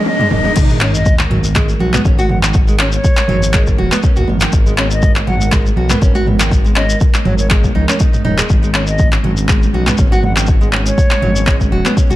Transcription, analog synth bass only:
0.32 D#1
0.57 G#1
1.31 G#1
1.81 B1
2.05 G#1
3.29 G#1
3.79 D#1
4.17 D#2
4.29 G#1
4.53 G#1
5.27 G#1
5.77 B1
6.02 G#1
7.26 G#1
7.64 B1
7.76 C#2
8.25 D#1
8.50 G#1
9.24 G#1
9.74 B1
9.99 G#1
11.23 G#1
11.72 D#1
12.11 D#2

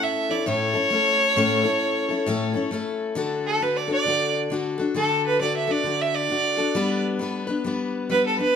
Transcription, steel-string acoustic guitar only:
Already playing: C#4 E4 A4
0.29 C#4 E4 A4
0.46 A2 A3 C#4 E4 A4
0.74 C#4 E4 A4
0.90 A3 C#4 E4 A4
1.36 A2 A3 C#4 E4 A4
1.64 C#4 E4 A4
2.09 C#4 E4 A4
2.26 A2 A3 C#4 E4 A4
2.54 C#4 E4 A4
2.71 A3 C#4 E4 A4
3.15 D3 D4 F#4 A4
3.60 D3 D4 F#4 A4
3.88 D4 F#4 A4
4.05 D3 D4 F#4 A4
4.50 D3 D4 F#4 A4
4.78 D4 F#4 A4
4.94 D3 D4 F#4 A4
5.39 D3 D4 F#4 A4
5.67 D4 F#4 A4
5.84 D3 D4 F#4 A4
6.29 D3 D4 F#4 A4
6.57 D4 F#4 A4
6.75 G3 B3 D4 B4
7.19 G3 B3 D4 B4
7.47 B3 D4 B4
7.64 G3 B3 D4 B4
8.10 G3 B3 D4 B4
8.37 B3 D4 B4

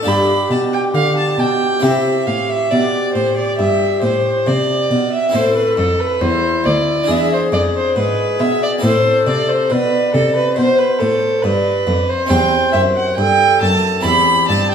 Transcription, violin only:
0.08 B5
0.51 A5
0.73 G5
0.95 F5
1.17 A5
1.40 G5
1.83 E5
2.27 F5
2.49 E5
2.71 D5
3.14 C5
3.37 D5
3.58 E5
4.02 C5
4.47 D5
5.12 E5
5.34 C5
5.56 B4
5.77 A4
6.00 B4
6.21 C5
6.66 D5
7.11 E5
7.33 C5
7.53 D5
7.76 C5
7.97 B4
8.40 E5
8.63 D5
8.83 C5
9.27 D5
9.49 C5
9.71 B4
10.14 A4
10.36 B4
10.56 C5
10.78 B4
10.99 A4
11.42 B4
12.09 C5
12.30 G5
12.72 E5
12.96 F#5
13.16 G5
13.61 A5
14.05 B5
14.48 A5
14.71 G5

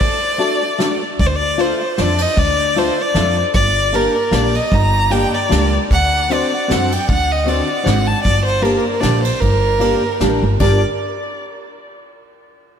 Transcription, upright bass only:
1.20 D2
1.99 F2
2.37 D2
3.15 F2
3.55 G1
4.32 A#1
4.72 G1
5.51 C#2
5.91 D2
6.70 F#2
7.09 D2
7.86 G#1
8.26 G1
9.03 A#1
9.41 G1
10.21 A1
10.42 G1
10.61 G1

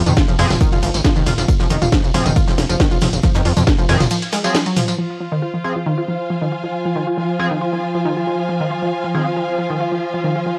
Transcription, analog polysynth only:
0.39 F3 C4 G#4
2.14 F3 C4 G#4
3.89 F3 C4 G#4
4.44 F3 C4 G#4
5.64 F3 C4 G#4
7.40 F3 C4 G#4
9.15 F3 C4 G#4

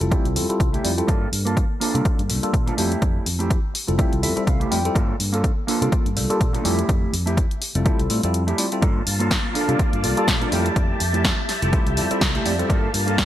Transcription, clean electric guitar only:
0.10 A3 E4 G4
0.35 muted clean electric guitar stroke
0.73 A3 E4 G4
1.07 A#3 F4 A4
1.45 A#3 F4 A4
1.80 A#3 D4 F4 A4
2.29 muted clean electric guitar stroke
2.66 A#3 D4 F4 A4
2.77 A3 E4 G4
3.39 A3 E4 G4
3.74 muted clean electric guitar stroke
3.98 A3 E4 G4
4.22 E5, muted clean electric guitar stroke
4.47 F5
4.60 A3 E4 G4
4.71 G5
4.95 A#3 F4 A4
5.32 A#3 F4 A4
5.67 A#3 D4 F4 A4
6.15 muted clean electric guitar stroke
6.53 A#3 D4 F4 A4
6.64 A3 E4 G4
7.26 A3 E4 G4
7.61 muted clean electric guitar stroke
7.85 A3 E4 G4
8.09 muted clean electric guitar stroke
8.47 A3 E4 G4
8.81 A#3 F4 A4
9.19 A#3 F4 A4
9.54 A#3 D4 F4 A4
10.03 muted clean electric guitar stroke
10.40 A#3 D4 F4 A4
10.51 A3 E4 G4
11.13 A3 E4 G4
11.48 muted clean electric guitar stroke
11.72 A3 E4 G4
11.96 muted clean electric guitar stroke
12.34 A3 E4 G4
12.69 A#3 F4 A4
13.07 A#3 F4 A4

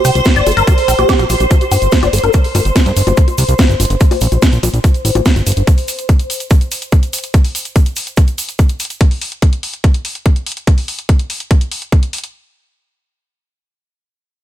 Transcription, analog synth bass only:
0.05 C2
0.15 C2
0.36 G1
0.47 G1
0.57 G1
0.88 A#1
0.99 A#1
1.19 A#1
1.30 A#1
1.40 A#1
1.72 G1
1.82 G1
2.03 G1
2.13 G1
2.24 G1
2.55 G1
2.65 G1
2.86 G2
2.97 G1
3.07 G1
3.38 C2
3.49 C2
3.69 G1
3.80 G1
3.90 G1
4.22 A#1
4.32 A#1
4.53 A#1
4.63 A#1
4.74 A#1
5.05 A1
5.15 A1
5.36 G1
5.47 G1
5.57 G1

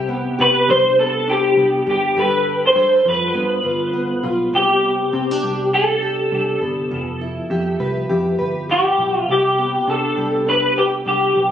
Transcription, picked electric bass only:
Already playing: C2
0.40 C3
0.69 C2
1.57 C2
1.87 G1
2.17 G1
2.76 G2
3.05 F2
3.35 G2
3.65 G1
4.24 B1
4.54 C2
5.13 C3
5.44 C2
6.32 C2
6.62 G1
6.91 F1
7.50 F2
7.80 C2
8.11 F2
8.40 G1
8.99 B1
9.28 C2
9.88 C3
10.17 C2
11.06 C2
11.36 B1

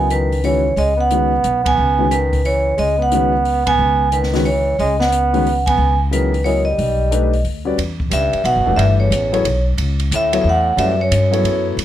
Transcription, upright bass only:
Already playing: C#2
0.76 C#2
1.44 B1
1.78 C#2
2.78 C#2
3.78 C#2
4.79 C#2
5.77 C#2
6.78 B1
7.44 D2
7.78 E2
8.11 C#2
8.34 muted upright bass stroke
8.44 B1
8.56 G1
8.66 E1
8.77 G1
9.10 A1
9.45 B1
9.77 C#2
10.11 D2
10.44 E2
10.77 F#2
11.11 G2
11.43 F#2
11.77 E2

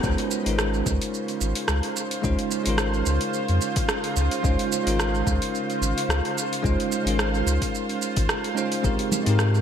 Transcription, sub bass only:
0.04 C#2
0.46 G#1
0.86 C#2
1.41 G#1
1.69 C#2
2.24 C#2
2.67 G#1
3.07 C#2
3.49 F2
4.17 C#2
4.44 C#2
4.87 G#1
5.27 C#2
5.82 G#1
6.09 C#2
6.64 C#2
7.06 G#1
7.46 C#2
8.17 G#1
8.84 G#1
9.27 G#2

